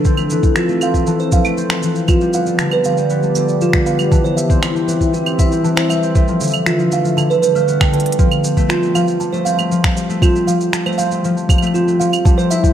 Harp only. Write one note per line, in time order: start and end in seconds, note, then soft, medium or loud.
0.00 0.10 D3 medium
0.00 0.10 E3 medium
0.00 0.10 F3 medium
0.00 0.18 A3 medium
0.00 2.73 D4 medium
0.06 0.81 C4 medium
0.18 0.68 A3 medium
0.31 1.06 E3 medium
0.56 1.31 F3 medium
0.69 0.94 A3 medium
0.81 1.57 C4 medium
0.94 1.45 A3 medium
1.07 1.82 E3 medium
1.32 2.08 F3 medium
1.45 1.70 A3 medium
1.58 2.40 C4 medium
1.71 5.04 A3 medium
1.83 2.14 E3 medium
2.09 2.65 F3 medium
2.21 2.46 G3 medium
2.34 3.10 B3 medium
2.47 2.65 G3 medium
2.60 3.35 D3 medium
2.85 3.41 F3 medium
2.98 3.22 G3 medium
3.10 3.85 B3 medium
3.23 3.41 G3 medium
3.36 4.17 D3 medium
3.61 4.17 F3 medium
3.74 3.98 G3 loud
3.86 4.55 B3 medium
3.99 4.17 G3 medium
4.11 4.86 E3 medium
4.37 5.12 G3 medium
4.49 4.75 C4 loud
4.62 5.38 E4 medium
4.75 5.25 C4 medium
4.88 5.63 E3 medium
5.13 5.89 G3 medium
5.26 5.51 C4 medium
5.39 6.34 E4 medium
5.52 6.02 C4 medium
5.64 6.21 E3 loud
5.90 6.21 G3 medium
6.03 7.74 C4 medium
6.16 6.91 A3 medium
6.28 6.46 F3 medium
6.41 7.16 D3 loud
6.66 7.22 E3 medium
6.79 7.03 F3 medium
6.92 7.55 A3 loud
7.04 7.22 F3 medium
7.17 7.92 D3 loud
7.42 7.99 G3 medium
7.55 7.80 A3 medium
7.68 8.75 B3 medium
7.80 8.56 A3 medium
7.93 8.24 D3 medium
8.19 8.94 F3 loud
8.44 9.19 G3 medium
8.57 8.82 A3 loud
8.69 9.45 C4 medium
8.82 9.33 A3 medium
8.95 9.70 F3 loud
9.20 9.96 G3 medium
9.33 9.58 A3 loud
9.46 10.22 C4 medium
9.59 10.09 A3 medium
9.71 10.46 F3 medium
9.97 10.72 G3 medium
10.09 10.35 A3 loud
10.22 10.98 C4 loud
10.35 10.86 A3 medium
10.47 11.23 F3 loud
10.73 11.49 G3 medium
10.86 11.11 A3 loud
10.99 11.75 C4 loud
11.12 11.62 A3 medium
11.24 11.99 F3 loud
11.50 12.24 G3 medium
11.62 11.87 A3 medium
11.75 12.37 C4 medium
11.88 12.73 A3 medium
12.00 12.31 F3 loud
12.26 12.73 G3 medium
12.38 12.63 C4 loud
12.51 12.73 E4 loud
12.64 12.73 C4 medium